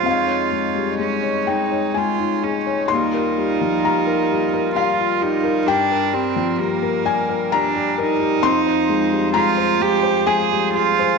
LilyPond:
<<
  \new Staff \with { instrumentName = "Felt piano" } { \time 3/4 \key f \minor \tempo 4 = 65 f''4. g''8 aes''4 | c'''4 bes''4 f''4 | g''4. aes''8 bes''4 | c'''4 bes''4 aes''4 | }
  \new Staff \with { instrumentName = "Felt piano" } { \clef bass \time 3/4 \key f \minor f,16 des''16 aes16 g16 aes16 des''16 aes16 des''16 aes16 ees'16 aes'16 des''16 | ees,16 bes'16 g16 f16 g16 bes'16 g16 bes'16 g16 f'16 g'16 bes'16 | g,16 bes'16 g16 f16 g16 bes'16 g16 bes'16 g16 g'16 bes'16 g'16 | f,16 c''16 aes16 g16 aes16 c''16 aes16 c''16 aes16 g16 aes'16 c''16 | }
  \new Staff \with { instrumentName = "Harmonium" } { \time 3/4 \key f \minor << { <aes des''>2. | <g bes'>2.~ | <g bes'>2. | <f c''>2. | } \\ { ees'2. | f'2. | r2. | r2. | } >> }
  \new Staff \with { instrumentName = "Cello" } { \time 3/4 \key f \minor f'4 des'8 ees'8 f'8 des'8 | ees'2 f'8 ees'8 | d'8 c'8 bes4 d'8 ees'8~ | ees'4 f'8 g'8 aes'8 f'8 | }
>>